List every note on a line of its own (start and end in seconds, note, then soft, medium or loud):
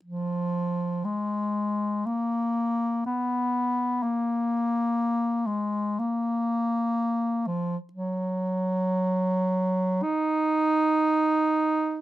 0.04 1.06 F3 soft
1.04 2.07 G#3 soft
2.06 3.05 A#3 soft
3.06 4.04 B3 medium
4.03 5.48 A#3 medium
5.47 6.01 G#3 soft
5.99 7.48 A#3 medium
7.47 7.77 F3 medium
7.93 10.04 F#3 medium
10.03 12.01 D#4 medium